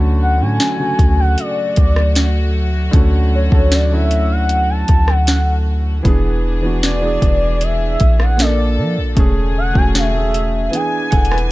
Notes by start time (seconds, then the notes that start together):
Already playing: D2 D3 F#3 A3 C#4 F#4
0.22 F#5
0.38 A2 D3 A3 C#4
0.42 F#4 G#5
0.60 snare, closed hi-hat
0.76 C#3 D3 A3
0.81 F#4
0.99 D2, kick, closed hi-hat
1.20 F#5
1.38 D5, closed hi-hat
1.76 D2, kick, closed hi-hat
1.96 cross-stick
2.15 snare, closed hi-hat
2.91 D2 D3 A3 C#4, kick, closed hi-hat
2.96 F#4
3.35 C#5
3.50 D2 D3 A3 C#4, kick
3.54 A4 C#5
3.72 D5, snare, closed hi-hat
3.89 D3 A3 C#4
3.93 E4 E5
4.11 closed hi-hat
4.31 F#5
4.49 F#5, closed hi-hat
4.70 A5
4.88 D2, kick, closed hi-hat
5.08 F#5, cross-stick
5.27 snare, closed hi-hat
6.03 E1 E3 B3 D4 G#4, kick, closed hi-hat
6.07 G#4
6.61 E3 B3 D4
6.66 F#4
6.83 D5, snare, closed hi-hat
7.00 E3 B3 D4
7.05 G#4
7.22 E1, kick, closed hi-hat
7.61 E5, closed hi-hat
8.00 A#1, kick, closed hi-hat
8.20 F#5, cross-stick
8.36 A#2 D3 A#3 D4 A4, snare, closed hi-hat
8.41 A4 D5
8.78 F3
8.98 A#1
9.15 E1 C#3 A3 C#4 G#4, kick, closed hi-hat
9.19 G#4
9.58 F#5
9.73 E1 A3 C#4, kick
9.77 F#4 G#5
9.95 E5, snare, closed hi-hat
10.12 A3 C#4
10.16 G#4
10.34 closed hi-hat
10.70 E3 B3 D4 G#5, closed hi-hat
10.75 G#4 G#5
11.11 E1 A4 F#5, kick, closed hi-hat
11.25 closed hi-hat
11.31 B4 G#5, cross-stick
11.38 closed hi-hat